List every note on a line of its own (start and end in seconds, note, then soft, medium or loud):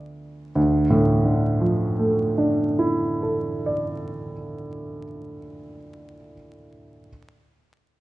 0.00 0.50 D2 medium
0.00 0.50 F3 soft
0.00 0.51 B3 soft
0.00 0.51 D4 soft
0.00 0.52 A4 soft
0.55 4.32 D2 medium
0.90 4.67 A2 medium
1.24 5.01 D3 medium
1.61 5.38 F3 medium
1.99 5.76 A3 medium
2.38 6.14 D4 medium
2.79 6.33 E4 medium
3.23 6.34 A4 soft
3.66 6.34 D5 medium